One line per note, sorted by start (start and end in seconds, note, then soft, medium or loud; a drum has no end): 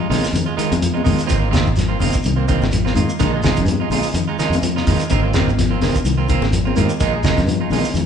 0.00 0.08 G#3 soft
0.00 0.09 D#4 soft
0.09 0.22 A#1 medium
0.09 0.28 D3 medium
0.09 0.25 D#3 medium
0.09 0.25 G#3 medium
0.09 0.26 D#4 medium
0.09 0.26 F4 medium
0.09 snare soft
0.09 open hi-hat medium
0.09 high conga medium
0.09 low conga medium
0.09 shekere soft
0.24 snare soft
0.24 shekere medium
0.33 0.45 F2 medium
0.33 0.52 D#3 medium
0.33 closed hi-hat medium
0.33 low conga medium
0.33 shekere medium
0.46 0.56 G#3 soft
0.46 0.57 F4 medium
0.57 0.73 D#3 medium
0.57 0.75 D#3 medium
0.57 0.73 G#3 medium
0.57 0.73 D#4 medium
0.57 0.73 F4 medium
0.57 muted fingered electric bass stroke soft
0.57 closed hi-hat medium
0.57 shekere soft
0.72 1.03 F2 medium
0.72 closed hi-hat medium
0.72 high conga medium
0.72 shekere soft
0.82 0.99 F3 medium
0.82 closed hi-hat medium
0.82 low conga medium
0.82 shekere medium
0.94 1.03 G#3 soft
0.94 1.03 D#4 medium
0.94 1.04 F4 medium
0.94 high conga medium
1.04 1.18 A#1 medium
1.04 1.20 D#3 medium
1.04 1.23 D#3 medium
1.04 1.21 G#3 medium
1.04 1.20 D#4 medium
1.04 1.21 F4 medium
1.04 kick medium
1.04 open hi-hat medium
1.04 low conga medium
1.04 shekere medium
1.18 muted fingered electric bass stroke soft
1.18 closed hi-hat soft
1.18 shekere medium
1.27 1.64 G#1 loud
1.27 1.47 D3 medium
1.27 1.41 D#3 medium
1.27 1.39 A#3 medium
1.27 1.39 C4 medium
1.27 1.38 F4 medium
1.27 kick medium
1.27 closed hi-hat medium
1.27 shekere medium
1.39 1.50 A#3 soft
1.39 1.50 C4 medium
1.39 1.50 F4 medium
1.50 1.67 D#3 medium
1.50 1.71 D#3 medium
1.50 1.67 A#3 medium
1.50 1.68 C4 medium
1.50 1.68 F4 medium
1.50 kick medium
1.50 closed hi-hat medium
1.50 high conga medium
1.50 shekere medium
1.55 snare medium
1.66 1.98 G#1 medium
1.66 kick medium
1.66 shekere soft
1.76 1.94 F3 medium
1.76 snare soft
1.76 closed hi-hat medium
1.76 shekere medium
1.88 1.99 A#3 soft
1.88 1.99 C4 soft
1.88 2.00 F4 medium
2.00 2.13 F1 medium
2.00 2.18 D3 medium
2.00 2.16 D#3 medium
2.00 2.16 A#3 medium
2.00 2.16 C4 medium
2.00 2.17 F4 medium
2.00 open hi-hat medium
2.00 high conga medium
2.00 low conga medium
2.00 shekere soft
2.13 muted fingered electric bass stroke soft
2.13 kick medium
2.13 closed hi-hat medium
2.13 shekere medium
2.24 2.58 C2 medium
2.24 2.43 D#3 medium
2.24 closed hi-hat medium
2.24 low conga medium
2.24 shekere medium
2.36 2.47 A#3 soft
2.36 2.47 C4 medium
2.36 2.48 F4 soft
2.48 2.63 D#3 medium
2.48 2.66 D#3 medium
2.48 2.64 A#3 medium
2.48 2.64 C4 medium
2.48 2.64 F4 medium
2.48 kick medium
2.48 closed hi-hat soft
2.48 shekere soft
2.61 2.92 G#1 medium
2.61 snare soft
2.61 high conga loud
2.61 shekere soft
2.71 2.90 F3 medium
2.71 closed hi-hat medium
2.71 low conga medium
2.71 shekere medium
2.85 2.95 A#3 soft
2.85 2.95 C4 soft
2.85 2.95 F4 medium
2.85 snare soft
2.85 high conga medium
2.95 3.07 G#2 medium
2.95 3.11 D#3 soft
2.95 3.13 D#3 medium
2.95 3.11 A#3 medium
2.95 3.12 F4 medium
2.95 muted clean electric guitar stroke medium
2.95 closed hi-hat medium
2.95 shekere medium
2.99 high conga medium
2.99 low conga medium
3.09 shekere medium
3.19 3.60 A#1 medium
3.19 3.37 D3 medium
3.19 3.33 D#3 medium
3.19 3.33 G#3 medium
3.19 3.33 D#4 medium
3.19 3.32 F4 medium
3.19 kick medium
3.19 closed hi-hat medium
3.19 shekere medium
3.33 3.42 G#3 soft
3.33 3.43 D#4 medium
3.33 3.44 F4 medium
3.43 3.61 D#3 medium
3.43 3.59 G#3 medium
3.43 3.59 D#4 medium
3.43 3.60 F4 medium
3.43 muted clean electric guitar stroke medium
3.43 kick medium
3.43 snare medium
3.43 closed hi-hat soft
3.43 high conga medium
3.43 shekere medium
3.56 3.79 G2 medium
3.56 kick medium
3.56 closed hi-hat medium
3.56 shekere soft
3.66 3.85 F3 medium
3.66 closed hi-hat medium
3.66 shekere medium
3.71 high conga medium
3.80 3.90 G#3 soft
3.80 3.90 D#4 soft
3.80 3.91 F4 medium
3.90 4.02 A#1 medium
3.90 4.08 D3 medium
3.90 4.07 G#3 medium
3.90 4.07 D#4 medium
3.90 4.07 F4 medium
3.90 open hi-hat medium
3.90 shekere soft
3.95 high conga medium
3.95 low conga medium
4.03 shekere medium
4.14 4.26 F2 medium
4.14 4.33 D#3 medium
4.14 closed hi-hat medium
4.14 shekere medium
4.28 4.38 G#3 soft
4.28 4.38 D#4 medium
4.28 4.38 F4 soft
4.38 4.54 D#3 medium
4.38 4.56 D#3 medium
4.38 4.54 G#3 medium
4.38 4.54 D#4 medium
4.38 4.55 F4 medium
4.38 muted fingered electric bass stroke soft
4.38 snare soft
4.38 closed hi-hat medium
4.38 shekere soft
4.50 4.82 F2 medium
4.50 closed hi-hat soft
4.50 shekere soft
4.55 high conga medium
4.62 4.80 F3 medium
4.62 closed hi-hat medium
4.62 low conga medium
4.62 shekere medium
4.76 4.87 D#4 soft
4.76 4.86 F4 medium
4.76 muted clean electric guitar stroke soft
4.76 snare soft
4.76 high conga medium
4.87 4.98 A#1 medium
4.87 5.02 D#3 medium
4.87 5.04 D#3 medium
4.87 5.02 G#3 medium
4.87 5.03 D#4 medium
4.87 5.03 F4 medium
4.87 kick medium
4.87 open hi-hat medium
4.87 high conga medium
4.87 low conga medium
4.87 shekere medium
4.99 muted fingered electric bass stroke soft
4.99 closed hi-hat soft
4.99 shekere medium
5.10 5.44 G#1 loud
5.10 5.27 D3 medium
5.10 5.23 D#3 medium
5.10 5.23 A#3 medium
5.10 5.22 C4 medium
5.10 5.22 F4 medium
5.10 kick medium
5.10 closed hi-hat medium
5.10 shekere medium
5.23 5.34 A#3 soft
5.23 5.34 C4 soft
5.23 5.34 F4 medium
5.34 5.49 D#3 medium
5.34 5.52 D#3 medium
5.34 5.50 A#3 medium
5.34 5.50 C4 medium
5.34 5.50 F4 medium
5.34 kick medium
5.34 snare medium
5.34 closed hi-hat soft
5.34 high conga medium
5.34 shekere medium
5.48 5.78 G#1 medium
5.48 kick medium
5.48 high conga medium
5.48 shekere soft
5.59 5.75 F3 medium
5.59 snare soft
5.59 closed hi-hat medium
5.59 high conga medium
5.59 shekere medium
5.71 5.81 A#3 soft
5.71 5.81 C4 soft
5.71 5.81 F4 medium
5.80 5.93 F1 medium
5.80 5.99 D3 medium
5.80 5.97 D#3 medium
5.80 5.97 A#3 medium
5.80 5.97 C4 medium
5.80 5.98 F4 medium
5.80 snare soft
5.80 open hi-hat medium
5.80 high conga medium
5.80 low conga medium
5.80 shekere soft
5.95 muted fingered electric bass stroke soft
5.95 kick medium
5.95 closed hi-hat medium
5.95 shekere medium
6.05 6.38 C2 medium
6.05 6.22 D#3 medium
6.05 closed hi-hat medium
6.05 low conga medium
6.05 shekere medium
6.17 6.28 A#3 soft
6.17 6.29 C4 soft
6.17 6.28 F4 soft
6.28 6.46 D#3 medium
6.28 6.44 A#3 medium
6.28 6.45 C4 medium
6.28 6.45 F4 medium
6.28 kick medium
6.28 closed hi-hat medium
6.28 shekere soft
6.41 6.73 G#1 medium
6.41 snare soft
6.41 high conga medium
6.41 shekere soft
6.52 6.70 F3 medium
6.52 closed hi-hat medium
6.52 shekere medium
6.65 6.75 A#3 soft
6.65 6.76 C4 medium
6.65 6.76 F4 medium
6.65 high conga medium
6.76 6.88 G#2 medium
6.76 6.91 D#3 medium
6.76 6.94 D#3 medium
6.76 6.92 A#3 medium
6.76 6.92 C4 medium
6.76 6.92 F4 medium
6.76 closed hi-hat medium
6.76 high conga medium
6.76 low conga medium
6.76 shekere medium
6.89 shekere medium
7.00 7.39 A#1 medium
7.00 7.13 D#3 medium
7.00 7.13 G#3 medium
7.00 7.14 D#4 medium
7.00 7.14 F4 medium
7.00 muted clean electric guitar stroke medium
7.00 kick medium
7.00 closed hi-hat medium
7.00 shekere medium
7.15 7.23 G#3 soft
7.15 7.24 D#4 soft
7.23 7.41 D#3 medium
7.23 7.39 D#3 medium
7.23 7.39 G#3 medium
7.23 7.40 D#4 medium
7.23 7.40 F4 medium
7.23 kick medium
7.23 snare medium
7.23 closed hi-hat soft
7.23 high conga medium
7.23 shekere medium
7.36 7.59 G2 loud
7.36 kick medium
7.36 snare soft
7.36 closed hi-hat soft
7.36 high conga medium
7.36 shekere soft
7.47 7.65 F3 medium
7.47 closed hi-hat medium
7.47 high conga medium
7.47 shekere medium
7.60 7.70 G#3 soft
7.60 7.71 D#4 medium
7.60 7.71 F4 medium
7.70 7.83 A#1 medium
7.70 7.88 D3 medium
7.70 7.87 D#3 medium
7.70 7.87 G#3 medium
7.70 7.87 D#4 medium
7.70 7.87 F4 medium
7.70 open hi-hat medium
7.70 high conga medium
7.70 low conga medium
7.70 shekere soft
7.84 shekere medium
7.94 8.06 F2 medium
7.94 8.06 D#3 medium
7.94 closed hi-hat medium
7.94 low conga medium
7.94 shekere medium